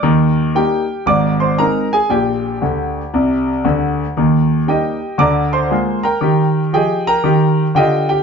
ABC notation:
X:1
M:4/4
L:1/8
Q:"Swing" 1/4=116
K:Eb
V:1 name="Grand piano"
z2 [Gg]2 [dd'] [cc'] [Bb] [Aa] | [Gg]6 z2 | z2 [Geg]2 [dbd'] [cc']2 [Bgb]- | [Bgb]2 [Geg] [Bgb]3 [Geg] [Gg] |]
V:2 name="Grand piano" clef=bass
[E,,E,]2 [G,B,E]2 [A,,,A,,]2 [A,CE]2 | [B,,,B,,]2 [D,,D,]2 [C,,C,]2 [D,,D,]2 | [E,,E,]2 [G,B,E]2 [D,,D,]2 [A,B,F]2 | [E,G]2 [F,A]2 [E,G]2 [D,F]2 |]